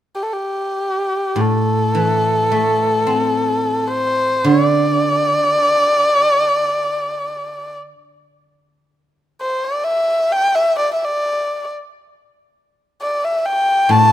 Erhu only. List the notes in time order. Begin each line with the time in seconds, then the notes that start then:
0.15 G4
0.23 A4
0.33 G4
1.41 A4
3.88 C5
4.46 C#5
4.65 D5
9.41 C5
9.64 D5
9.84 E5
10.32 G5
10.55 E5
10.79 D5
10.94 E5
11.04 D5
13.01 D5
13.24 E5
13.45 G5
13.91 A5